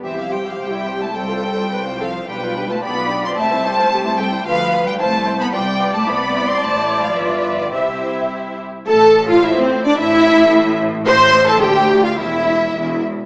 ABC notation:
X:1
M:2/4
L:1/16
Q:1/4=108
K:C
V:1 name="Violin section"
e f g f g3 a | g6 f2 | g3 a b3 c' | a6 g2 |
f3 g a3 b | g3 a b3 c' | a3 f e3 d | c6 z2 |
[K:Am] a3 f e c2 d | e6 z2 | c'3 a g3 f | e6 z2 |]
V:2 name="Viola section"
G8 | A4 B2 A2 | B4 d4 | e2 c2 G2 A2 |
B4 c4 | d8- | d8 | e6 z2 |
[K:Am] A3 F E C2 D | E6 z2 | c3 A G3 F | E6 z2 |]
V:3 name="Violin section"
[Gc] [Ee] [Gc] [Ee] [Gc] [Ee] [Gc] [Ee] | [CA] [Fc] [CA] [Fc] [CA] [Fc] [CA] [Fc] | [DG] [FB] [DG] [FB] [DG] [FB] [DG] [FB] | [CG] [Ec] [CG] [Ec] [CG] [Ec] [CG] [Ec] |
[FB]2 [FB]2 [Ec]2 [Ec]2 | [FB]2 [FB]2 [Ec]2 [Ec]2 | [Ec]4 [FB]4 | [EG]6- [EG] z |
[K:Am] A3 F E C2 D | E6 z2 | c3 A G3 F | E6 z2 |]
V:4 name="Cello section" clef=bass
E, F, G, F, G,3 A, | G,6 F,2 | G,3 A, B,3 C | A,6 G,2 |
F,3 G, A,3 B, | G,3 A, B,3 C | A,3 F, E,3 D, | C,6 z2 |
[K:Am] A,,8 | A,,8 | A,,4 D,,4 | E,,4 E,,2 z2 |]
V:5 name="Double bass section" clef=bass
C,,4 C,,4 | C,,4 C,,4 | B,,,4 B,,,4 | C,,4 C,,4 |
D,,4 C,,4 | C,,4 C,,4 | A,,,4 G,,,4 | C,,6 z2 |
[K:Am] A,,,8 | A,,,8 | A,,,4 D,,4 | E,,,4 E,,,2 z2 |]